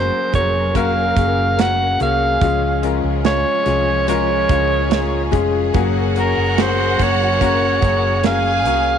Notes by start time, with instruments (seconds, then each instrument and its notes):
Already playing: string section F#3 C#4 G#4 A#4, steel-string acoustic guitar F#3 C#4 F#4, grand piano A#3 C#4 F#4 G#4 A#4, soprano saxophone C5
0.33 fingered electric bass F1, grand piano A#3 C#4 F#4 A#4, steel-string acoustic guitar G#4, soprano saxophone C#5, kick, closed hi-hat
0.74 grand piano A#3 C#4 F#4 A#4, steel-string acoustic guitar F#4, soprano saxophone F5, kick, closed hi-hat
1.16 fingered electric bass F#1, grand piano A#3 C#4 F#4 G#4, steel-string acoustic guitar C#4, kick, closed hi-hat
1.57 grand piano A#3 C#4 F#4 A#4, steel-string acoustic guitar F#4, soprano saxophone F#5, snare, closed hi-hat
2.00 fingered electric bass C2, grand piano A#3 C#4 F#4 G#4, steel-string acoustic guitar G#4, soprano saxophone F5, closed hi-hat
2.41 fingered electric bass C#2, grand piano C#3 G#3 C#4 F4 G#4, string section F3 F4, kick, closed hi-hat
2.82 grand piano G#3 C#4 F4 A#4, steel-string acoustic guitar C#4, closed hi-hat
3.04 fingered electric bass C#2
3.24 grand piano G#3 C#4 F4 A#4, steel-string acoustic guitar F4, soprano saxophone C#5, snare, closed hi-hat
3.65 fingered electric bass C2, grand piano G#3 C#4 F4 G#4, steel-string acoustic guitar G#4, snare, closed hi-hat
4.07 grand piano G#3 C#4 F4 A#4, steel-string acoustic guitar F4, soprano saxophone C#5, closed hi-hat
4.49 fingered electric bass C#2, grand piano G#3 C#4 F4 G#4, steel-string acoustic guitar C#4, kick, closed hi-hat
4.89 grand piano G#3 C#4 F4 G#4, steel-string acoustic guitar F4, snare, closed hi-hat
5.31 fingered electric bass F1, grand piano G#3 C#4 F4 G#4, steel-string acoustic guitar G#4, kick, closed hi-hat
5.74 fingered electric bass F#1, steel-string acoustic guitar F#3, string section F#3 A#4, grand piano A#3 C#4 F#4 G#4, violin section F#4 F#5, kick, closed hi-hat
6.15 grand piano A#3 C#4 F#4 A#4, steel-string acoustic guitar C#4, closed hi-hat
6.20 soprano saxophone A#4
6.37 fingered electric bass F#1
6.57 grand piano A#3 C#4 F#4 G#4, steel-string acoustic guitar F#4, snare, closed hi-hat
6.61 soprano saxophone C5
6.99 fingered electric bass F#1, grand piano A#3 C#4 F#4 A#4, steel-string acoustic guitar G#4, soprano saxophone C#5, kick, closed hi-hat
7.40 grand piano A#3 C#4 F#4 A#4, steel-string acoustic guitar F#4, kick, closed hi-hat
7.82 fingered electric bass F#1, grand piano A#3 C#4 F#4 G#4, steel-string acoustic guitar C#4, kick, closed hi-hat
8.24 grand piano A#3 C#4 F#4 A#4, steel-string acoustic guitar F#4, violin section G#4 G#5, soprano saxophone F5, snare, closed hi-hat
8.65 fingered electric bass C2, grand piano A#3 C#4 F#4 G#4, steel-string acoustic guitar G#4, closed hi-hat